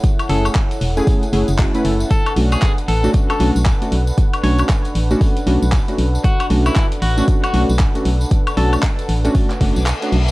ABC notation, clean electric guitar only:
X:1
M:4/4
L:1/16
Q:"Swing 16ths" 1/4=116
K:Bdor
V:1 name="Clean electric guitar"
z2 A z12 z | A2 z G2 z A2 z A2 z4 z | z2 c z12 z | F2 z E2 z F2 z F2 z4 z |
z2 A z12 z |]